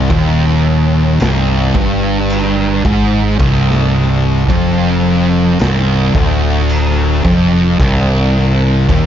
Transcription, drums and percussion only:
0.10 kick, crash
1.20 snare, crash
1.75 kick
2.30 crash
2.85 kick
3.39 kick, crash
3.70 snare
4.50 kick, crash
5.59 snare, crash
6.15 kick
6.69 crash
7.25 kick
7.80 kick, crash
8.89 kick, crash

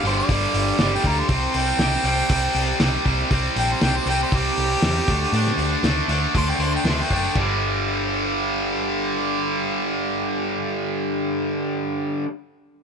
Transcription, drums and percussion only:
0.05 open hi-hat
0.29 kick, open hi-hat
0.54 open hi-hat
0.79 snare, open hi-hat
1.04 kick, open hi-hat
1.29 kick, open hi-hat
1.54 open hi-hat
1.79 snare, open hi-hat
2.05 open hi-hat
2.29 kick, open hi-hat
2.55 open hi-hat
2.80 snare, open hi-hat
3.06 kick, open hi-hat
3.31 kick, open hi-hat
3.56 open hi-hat
3.82 snare, open hi-hat
4.07 open hi-hat
4.32 kick, open hi-hat
4.57 open hi-hat
4.82 snare, open hi-hat
5.08 kick, open hi-hat
5.34 open hi-hat
5.47 snare
5.59 open hi-hat
5.84 snare, open hi-hat
6.09 open hi-hat
6.35 kick, open hi-hat
6.60 open hi-hat
6.85 snare, open hi-hat
7.11 kick, open hi-hat
7.35 kick, crash

